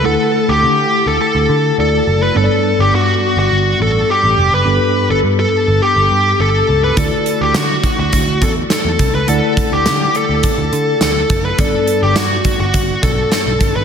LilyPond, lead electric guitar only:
\new Staff \with { instrumentName = "Lead electric guitar" } { \time 4/4 \key d \major \tempo 4 = 104 a'8. g'4 a'16 a'4 a'8. b'16 | a'8. g'16 fis'8. fis'8. a'8 g'8. b'16~ | b'8. a'8 a'8. g'4 a'8. b'16 | a'8. g'16 fis'8. fis'8. a'8 a'8. b'16 |
a'8. g'8. a'4. a'8. b'16 | a'8. g'16 fis'8. fis'8. a'8 a'8. b'16 | }